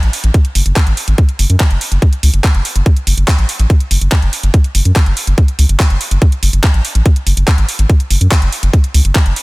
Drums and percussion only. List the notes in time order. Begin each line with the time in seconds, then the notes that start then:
0.03 closed hi-hat
0.13 open hi-hat
0.24 closed hi-hat
0.34 kick, closed hi-hat
0.45 closed hi-hat
0.55 open hi-hat
0.66 closed hi-hat
0.76 kick, clap, closed hi-hat
0.87 closed hi-hat
0.97 open hi-hat
1.08 closed hi-hat
1.18 kick, closed hi-hat
1.29 closed hi-hat
1.39 open hi-hat
1.50 closed hi-hat
1.60 kick, clap, closed hi-hat
1.71 closed hi-hat
1.81 open hi-hat
1.92 closed hi-hat
2.02 kick, closed hi-hat
2.13 closed hi-hat
2.23 open hi-hat
2.34 closed hi-hat
2.44 kick, clap, closed hi-hat
2.55 closed hi-hat
2.65 open hi-hat
2.76 closed hi-hat
2.86 kick, closed hi-hat
2.97 closed hi-hat
3.07 open hi-hat
3.18 closed hi-hat
3.28 kick, clap, closed hi-hat
3.38 closed hi-hat
3.49 open hi-hat
3.59 closed hi-hat
3.70 kick, closed hi-hat
3.80 closed hi-hat
3.91 open hi-hat
4.01 closed hi-hat
4.12 kick, clap, closed hi-hat
4.22 closed hi-hat
4.33 open hi-hat
4.43 closed hi-hat
4.54 kick, closed hi-hat
4.64 closed hi-hat
4.75 open hi-hat
4.85 closed hi-hat
4.96 kick, clap, closed hi-hat
5.06 closed hi-hat
5.17 open hi-hat
5.27 closed hi-hat
5.38 kick, closed hi-hat
5.48 closed hi-hat
5.59 open hi-hat
5.69 closed hi-hat
5.80 kick, clap, closed hi-hat
5.90 closed hi-hat
6.01 open hi-hat
6.11 closed hi-hat
6.22 kick, closed hi-hat
6.32 closed hi-hat
6.43 open hi-hat
6.53 closed hi-hat
6.64 kick, clap, closed hi-hat
6.74 closed hi-hat
6.85 open hi-hat
6.95 closed hi-hat
7.06 kick, closed hi-hat
7.16 closed hi-hat
7.27 open hi-hat
7.37 closed hi-hat
7.48 kick, clap, closed hi-hat
7.58 closed hi-hat
7.69 open hi-hat
7.79 closed hi-hat
7.90 kick, closed hi-hat
8.00 closed hi-hat
8.11 open hi-hat
8.21 closed hi-hat
8.31 kick, clap, closed hi-hat
8.42 closed hi-hat
8.52 open hi-hat
8.63 closed hi-hat
8.73 kick, closed hi-hat
8.84 closed hi-hat
8.94 open hi-hat
9.05 closed hi-hat
9.15 kick, clap, closed hi-hat
9.26 closed hi-hat
9.36 open hi-hat